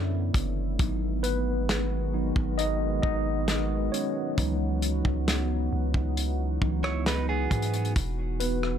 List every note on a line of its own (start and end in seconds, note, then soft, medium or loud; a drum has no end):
0.00 0.31 F#2 loud
0.00 0.76 D3 medium
0.00 0.76 A3 medium
0.00 0.76 B3 medium
0.00 0.76 E4 medium
0.34 0.78 F#1 loud
0.34 kick loud
0.34 closed hi-hat medium
0.79 2.32 G#1 loud
0.79 4.34 D#3 medium
0.79 2.10 F#3 medium
0.79 4.34 G#3 medium
0.79 7.92 B3 medium
0.79 1.24 B3 medium
0.79 2.10 D#4 medium
0.79 8.78 F#4 medium
0.79 kick loud
0.79 closed hi-hat medium
1.23 2.13 B3 medium
1.23 2.62 B4 loud
1.23 closed hi-hat medium
1.69 snare loud
1.69 closed hi-hat medium
2.14 2.55 F#3 medium
2.14 2.55 B3 soft
2.14 2.55 D#4 medium
2.36 3.01 G#1 loud
2.36 kick loud
2.58 3.01 D#4 medium
2.58 3.01 D#5 loud
2.58 closed hi-hat medium
3.02 3.90 G#1 loud
3.02 3.90 D#4 medium
3.02 3.95 D#5 loud
3.02 kick medium
3.48 snare loud
3.48 closed hi-hat medium
3.92 5.24 C#4 medium
3.92 5.23 C#5 medium
3.92 closed hi-hat medium
4.38 5.03 C#2 loud
4.38 6.60 E3 medium
4.38 8.78 E3 medium
4.38 6.61 F#3 medium
4.38 6.61 B3 medium
4.38 7.92 D#4 medium
4.38 6.61 D#4 medium
4.38 kick loud
4.38 closed hi-hat medium
4.82 closed hi-hat medium
5.05 5.70 C#2 loud
5.05 kick loud
5.28 snare loud
5.28 closed hi-hat medium
5.73 5.94 C#2 loud
5.94 6.59 C#2 loud
5.94 kick loud
6.17 closed hi-hat medium
6.62 7.48 C#2 loud
6.62 7.02 E3 soft
6.62 7.03 F#3 soft
6.62 7.03 B3 soft
6.62 7.03 D#4 medium
6.62 kick loud
6.84 7.06 E4 medium
6.84 7.05 C#5 medium
6.84 cross-stick loud
7.06 7.28 D#4 medium
7.06 7.28 B4 medium
7.06 snare loud
7.06 closed hi-hat medium
7.29 7.93 B3 medium
7.29 7.93 G#4 medium
7.51 7.94 G#2 loud
7.51 kick loud
7.51 closed hi-hat medium
7.62 closed hi-hat medium
7.74 closed hi-hat soft
7.85 closed hi-hat soft
7.96 8.78 E1 loud
7.96 8.78 G#3 medium
7.96 8.78 B3 medium
7.96 kick loud
7.96 closed hi-hat medium
8.40 8.78 B3 medium
8.40 8.78 B4 medium
8.40 closed hi-hat medium
8.63 cross-stick medium